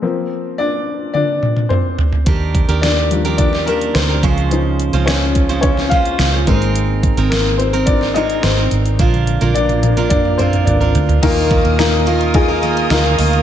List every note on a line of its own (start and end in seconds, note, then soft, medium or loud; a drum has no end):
0.02 2.22 F3 soft
0.02 2.23 A#3 soft
0.02 1.70 C4 medium
0.58 1.11 D4 medium
0.58 1.11 D5 medium
1.13 1.67 D4 medium
1.13 1.72 D5 medium
1.13 high tom soft
1.43 mid tom medium
1.56 mid tom medium
1.69 2.10 C4 medium
1.69 2.09 C5 medium
1.69 mid tom medium
1.99 floor tom medium
2.13 floor tom medium
2.26 2.66 D#2 medium
2.26 2.69 D#3 medium
2.26 2.68 D4 medium
2.26 2.68 G4 medium
2.26 2.67 A#4 medium
2.26 kick loud
2.26 closed hi-hat medium
2.55 kick medium
2.55 closed hi-hat medium
2.69 3.91 D#2 medium
2.69 3.25 D#3 medium
2.69 3.25 D4 medium
2.69 3.24 G4 medium
2.69 3.24 A#4 medium
2.69 closed hi-hat soft
2.81 3.10 D4 medium
2.81 3.36 D5 medium
2.81 snare medium
2.81 closed hi-hat medium
3.10 3.91 F3 soft
3.10 3.91 G3 soft
3.10 3.38 D4 medium
3.10 closed hi-hat medium
3.25 3.65 D#3 medium
3.25 3.66 D4 soft
3.25 3.67 G4 medium
3.25 3.67 A#4 medium
3.25 closed hi-hat soft
3.37 3.65 D4 medium
3.37 3.64 D5 medium
3.37 kick medium
3.37 closed hi-hat medium
3.53 snare soft
3.66 4.09 D#3 medium
3.66 3.74 A#3 medium
3.66 4.09 D4 medium
3.66 4.09 G4 medium
3.66 3.72 A#4 medium
3.66 4.08 A#4 medium
3.66 closed hi-hat medium
3.81 closed hi-hat soft
3.94 4.21 D2 medium
3.94 4.35 C4 medium
3.94 4.34 C5 medium
3.94 snare loud
3.94 closed hi-hat medium
4.09 4.24 D4 soft
4.09 4.24 G4 soft
4.09 4.23 A#4 soft
4.23 4.89 C#2 medium
4.23 4.93 C#3 medium
4.23 4.93 F3 medium
4.23 4.94 G#3 medium
4.23 4.93 C#4 medium
4.23 4.92 F4 medium
4.23 4.93 C5 medium
4.23 kick medium
4.23 closed hi-hat medium
4.38 closed hi-hat soft
4.50 4.88 F3 soft
4.50 4.89 D#4 medium
4.50 4.88 C5 soft
4.50 closed hi-hat medium
4.79 closed hi-hat medium
4.93 6.15 C#2 medium
4.93 5.49 C#3 medium
4.93 5.49 F3 medium
4.93 5.50 G#3 medium
4.93 5.49 C#4 medium
4.93 5.48 F4 medium
4.93 5.49 C5 medium
4.93 closed hi-hat soft
5.06 5.60 C#4 soft
5.06 5.60 C#5 medium
5.06 snare loud
5.06 closed hi-hat medium
5.35 kick medium
5.35 closed hi-hat medium
5.49 5.92 C#3 medium
5.49 5.92 F3 soft
5.49 5.90 G#3 medium
5.49 5.91 C#4 medium
5.49 5.91 F4 medium
5.49 5.91 C5 medium
5.49 closed hi-hat soft
5.61 5.70 C#4 medium
5.61 5.68 C#5 medium
5.61 kick medium
5.61 closed hi-hat medium
5.77 snare soft
5.89 6.33 G#3 medium
5.89 6.33 C#4 medium
5.89 6.44 F4 medium
5.89 6.33 F4 medium
5.89 6.32 C5 medium
5.89 6.42 F5 medium
5.89 kick medium
5.89 closed hi-hat medium
6.05 closed hi-hat medium
6.19 6.45 C#2 medium
6.19 snare loud
6.19 closed hi-hat medium
6.33 6.46 G#3 soft
6.33 6.47 C#4 soft
6.33 6.48 F4 soft
6.33 6.47 C5 medium
6.46 7.13 G#1 medium
6.46 7.27 G#3 soft
6.46 7.17 G#3 medium
6.46 7.27 A#3 soft
6.46 7.28 C4 medium
6.46 7.17 C4 medium
6.46 7.17 D#4 medium
6.46 7.17 A#4 medium
6.46 kick medium
6.46 closed hi-hat medium
6.62 closed hi-hat soft
6.75 closed hi-hat medium
7.03 kick medium
7.03 closed hi-hat medium
7.17 8.39 G#1 medium
7.17 7.74 G#3 medium
7.17 7.72 C4 medium
7.17 7.73 D#4 medium
7.17 7.73 A#4 medium
7.17 closed hi-hat soft
7.30 7.58 A#3 medium
7.30 7.59 A#4 medium
7.30 snare loud
7.30 closed hi-hat medium
7.58 7.86 C4 medium
7.58 7.87 C5 medium
7.58 closed hi-hat medium
7.73 8.14 G#3 medium
7.73 8.15 C4 medium
7.73 8.14 D#4 medium
7.73 8.15 A#4 medium
7.73 closed hi-hat medium
7.86 8.14 D4 medium
7.86 8.15 D5 medium
7.86 kick medium
7.86 closed hi-hat medium
8.01 snare soft
8.14 8.57 G#3 medium
8.14 8.57 C4 medium
8.14 8.57 D#4 medium
8.14 8.42 D#4 medium
8.14 8.56 A#4 medium
8.14 8.41 D#5 medium
8.14 closed hi-hat medium
8.30 closed hi-hat soft
8.43 8.69 G#1 medium
8.43 8.83 C4 medium
8.43 8.82 C5 medium
8.43 snare loud
8.43 closed hi-hat medium
8.57 9.00 C4 soft
8.57 9.00 D#4 soft
8.57 8.99 A#4 medium
8.71 8.97 G#1 medium
8.71 closed hi-hat medium
8.85 closed hi-hat soft
8.99 9.38 A#1 medium
8.99 9.41 A#3 medium
8.99 9.41 D4 medium
8.99 9.40 F4 medium
8.99 9.40 A#4 medium
8.99 kick loud
8.99 closed hi-hat medium
8.99 high tom medium
9.13 closed hi-hat soft
9.13 high tom soft
9.27 closed hi-hat medium
9.27 high tom medium
9.41 10.63 A#1 medium
9.41 9.97 A#2 medium
9.41 9.98 A#3 medium
9.41 9.97 D4 medium
9.41 9.97 F4 medium
9.41 9.97 A#4 medium
9.41 closed hi-hat soft
9.41 high tom soft
9.54 9.82 D4 medium
9.54 10.08 D5 medium
9.54 closed hi-hat medium
9.54 mid tom medium
9.69 closed hi-hat soft
9.69 mid tom medium
9.82 10.20 F3 soft
9.82 10.20 A#3 soft
9.82 10.10 D4 medium
9.82 closed hi-hat medium
9.82 mid tom medium
9.97 10.40 A#2 medium
9.97 10.37 A#3 medium
9.97 10.38 D4 medium
9.97 10.39 F4 medium
9.97 10.39 A#4 medium
9.97 closed hi-hat soft
9.97 mid tom medium
10.09 10.18 D4 medium
10.09 10.16 D5 medium
10.09 kick medium
10.09 closed hi-hat medium
10.09 mid tom medium
10.25 mid tom medium
10.38 10.81 A#3 medium
10.38 10.66 C4 medium
10.38 10.81 D4 medium
10.38 10.80 F4 medium
10.38 10.79 A#4 medium
10.38 10.67 C5 medium
10.38 closed hi-hat medium
10.38 mid tom medium
10.53 closed hi-hat soft
10.53 mid tom medium
10.65 10.93 G#1 medium
10.65 11.06 D4 medium
10.65 11.05 D5 medium
10.65 closed hi-hat medium
10.65 floor tom medium
10.80 11.23 D4 soft
10.80 11.23 F4 soft
10.80 11.23 A#4 medium
10.80 closed hi-hat soft
10.80 floor tom medium
10.95 11.21 D2 medium
10.95 closed hi-hat medium
10.95 floor tom medium
11.09 closed hi-hat soft
11.09 floor tom medium
11.22 11.62 D#2 medium
11.22 12.03 A#2 medium
11.22 12.05 D#3 medium
11.22 12.06 A#3 medium
11.22 11.67 D#4 loud
11.22 11.67 F4 loud
11.22 12.07 F4 loud
11.22 13.42 A#4 medium
11.22 11.67 A#4 loud
11.22 12.07 A#4 medium
11.22 13.42 D#5 medium
11.22 13.42 F5 medium
11.22 13.42 D#6 medium
11.22 kick loud
11.22 crash medium
11.22 ride medium
11.51 kick medium
11.51 ride medium
11.65 12.87 D#2 medium
11.65 ride soft
11.78 12.23 D#4 medium
11.78 12.23 F4 medium
11.78 12.23 A#4 medium
11.78 snare loud
11.78 ride medium
12.06 12.48 D#3 medium
12.06 12.49 A#3 medium
12.06 12.48 F4 medium
12.06 12.47 A#4 medium
12.06 ride medium
12.21 ride soft
12.34 12.79 D#4 medium
12.34 12.79 F4 medium
12.34 12.79 G#4 medium
12.34 kick medium
12.34 ride medium
12.48 12.62 A#3 soft
12.48 12.62 F4 medium
12.48 12.63 A#4 medium
12.62 12.89 D#3 medium
12.62 12.90 A#3 medium
12.62 12.91 F4 medium
12.62 12.91 A#4 medium
12.62 ride soft
12.77 ride soft
12.90 13.17 D2 medium
12.90 13.17 D#3 medium
12.90 13.18 A#3 medium
12.90 13.34 D#4 medium
12.90 13.35 F4 medium
12.90 13.18 F4 medium
12.90 13.35 A#4 medium
12.90 13.19 A#4 medium
12.90 snare loud
12.90 ride medium
13.18 13.42 D2 medium
13.18 13.42 D#3 medium
13.18 13.42 A#3 medium
13.18 13.42 F4 medium
13.18 13.42 A#4 medium
13.18 open hi-hat medium
13.18 ride medium
13.33 ride soft